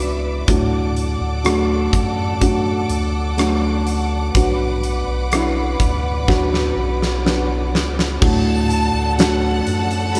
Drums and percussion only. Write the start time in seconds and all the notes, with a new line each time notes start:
0.00 closed hi-hat
0.48 kick, closed hi-hat
0.97 closed hi-hat
1.45 cross-stick, closed hi-hat
1.93 kick, closed hi-hat
2.41 kick, closed hi-hat
2.90 closed hi-hat
3.38 cross-stick, closed hi-hat
3.87 closed hi-hat
4.35 kick, closed hi-hat
4.83 closed hi-hat
5.32 cross-stick, closed hi-hat
5.80 kick, closed hi-hat
6.28 kick, snare
6.54 snare
7.02 snare
7.26 snare
7.75 snare
7.99 snare
8.22 kick, crash
8.71 closed hi-hat
9.19 snare, closed hi-hat
9.67 closed hi-hat
9.91 closed hi-hat
10.15 closed hi-hat